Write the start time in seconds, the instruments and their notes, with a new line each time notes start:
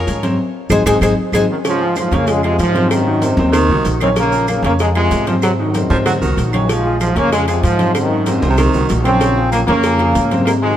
Already playing: grand piano F3 F4 G#4, cuban tres C#4 A#4
0.07 upright bass G#2, cowbell, high conga, maracas
0.23 grand piano C3 C4 C5, cowbell, high conga, maracas
0.70 upright bass G#1, grand piano G#3 C4 D#4, cuban tres G#4 C5 D#5, cowbell, high conga, claves, maracas
0.86 upright bass G#1, grand piano G#3 C4 D#4, cuban tres G#4 C5 D#5, cowbell, high conga, claves, maracas
1.01 upright bass G#1, grand piano G#3 C4 D#4, cuban tres G#4 C5 D#5, cowbell, high conga, claves, maracas
1.32 upright bass G#1, grand piano G#3 C4 D#4, cuban tres G#4 C5 D#5, cowbell, high conga, claves, maracas
1.50 trombone section F#2 D#3
1.64 trombone section G#2 F3, grand piano C#3 C#4 C#5, cowbell, high conga, maracas
1.80 grand piano F3 F4 G#4, high conga
1.96 trombone section G#2 F3, cowbell, high conga, claves, maracas
2.11 upright bass F2, grand piano C#3 C#4 C#5, trombone section C#3 A#3, cowbell, maracas
2.27 trombone section C#3 G#3, grand piano F3 F4 G#4, cowbell, high conga, maracas
2.43 trombone section C3 G#3, grand piano F3 F4 G#4, cowbell, high conga, claves
2.59 upright bass G#2, trombone section G#2 F3, cowbell, high conga, maracas
2.74 grand piano C3 C4 C5, cowbell, high conga, maracas
2.90 trombone section F#2 D#3, cowbell, high conga, claves, maracas
3.07 grand piano D#3 D#4 F#4, high conga
3.22 grand piano C3 C4 C5, baritone saxophone C3, cowbell, high conga, maracas
3.37 upright bass D#2, grand piano C3 C4 C5, high conga, maracas
3.52 baritone saxophone D#3, cowbell, high conga, low conga, claves, maracas
3.69 upright bass C2, grand piano D#3 D#4 F#4, high conga, low conga
3.85 upright bass A#1, cowbell, high conga, maracas
4.01 grand piano C#3 C#4 C#5, trombone section D#3 C4, cowbell, high conga, claves, maracas
4.16 grand piano C#3 C#4 C#5, trombone section C#3 A#3, cowbell, high conga, maracas
4.32 grand piano F3 F4 G#4, high conga, maracas
4.48 trombone section C#3 A#3, cowbell, high conga, claves, maracas
4.62 upright bass F2, grand piano C#3 C#4 C#5, trombone section C#3 A#3, cowbell, high conga, maracas
4.79 trombone section C#3 G#3, grand piano F3 F4 G#4, cowbell, high conga, maracas
4.95 trombone section C3 G#3, grand piano F3 F4 G#4, cowbell, claves
5.11 upright bass G#2, cowbell, high conga, maracas
5.27 trombone section G#2 F3, grand piano C3 C4 C5, cowbell, high conga, maracas
5.42 trombone section C3 F#3, cowbell, high conga, claves, maracas
5.59 trombone section F#2 D#3, grand piano D#3 D#4 F#4
5.74 grand piano C3 C4 C5, cowbell, high conga, maracas
5.90 upright bass G#2, grand piano C3 C4 C5, baritone saxophone F3, high conga, maracas
6.06 baritone saxophone F#3, cowbell, high conga, low conga, claves, maracas
6.21 upright bass C2, baritone saxophone D#3, grand piano D#3 D#4 F#4, high conga, low conga, maracas
6.37 upright bass A#1, cowbell, high conga, maracas
6.53 trombone section F#2 D#3, grand piano C#3 C#4 C#5, cowbell, high conga, claves, maracas
6.69 trombone section G#2 F3, grand piano C#3 C#4 C#5, cowbell, maracas
6.85 grand piano F3 F4 G#4, high conga
7.00 trombone section G#2 F3, cowbell, high conga, claves, maracas
7.16 upright bass F2, trombone section C#3 A#3, grand piano C#3 C#4 C#5, cowbell, high conga, maracas
7.32 trombone section C#3 G#3, grand piano F3 F4 G#4, cowbell, maracas
7.48 trombone section C3 G#3, grand piano F3 F4 G#4, cowbell, high conga, claves, maracas
7.63 upright bass G#2, trombone section G#2 F3, cowbell, high conga, maracas
7.79 grand piano C3 C4 C5, cowbell, high conga, maracas
7.94 trombone section F#2 D#3, cowbell, high conga, claves, maracas
8.11 grand piano D#3 D#4 F#4
8.26 baritone saxophone G#2, grand piano C3 C4 C5, cowbell, high conga, maracas
8.42 upright bass C2, grand piano C3 C4 C5, high conga, maracas
8.50 baritone saxophone C3
8.58 baritone saxophone D#3, cowbell, high conga, low conga, claves, maracas
8.73 upright bass C2, grand piano D#3 D#4 F#4, high conga, low conga, maracas
8.89 upright bass A#1, cowbell, high conga, maracas
9.05 grand piano C#3 C#4 C#5, trombone section F3 C4, cowbell, high conga, claves, maracas
9.21 grand piano C#3 C#4 C#5, cowbell, maracas
9.36 grand piano F3 F4 G#4, high conga
9.52 trombone section C#3 A#3, cowbell, high conga, claves, maracas
9.67 upright bass F2, grand piano C#3 C#4 C#5, trombone section C#3 A#3, cowbell, maracas
9.83 grand piano F3 F4 G#4, cowbell, high conga, maracas
9.99 grand piano F3 F4 G#4, cowbell, high conga, claves
10.15 upright bass G#2, cowbell, maracas
10.31 grand piano C3 C4 C5, cowbell, high conga, maracas
10.45 trombone section D#3 A#3, cowbell, high conga, claves, maracas
10.61 trombone section C3 G#3, grand piano D#3 D#4 F#4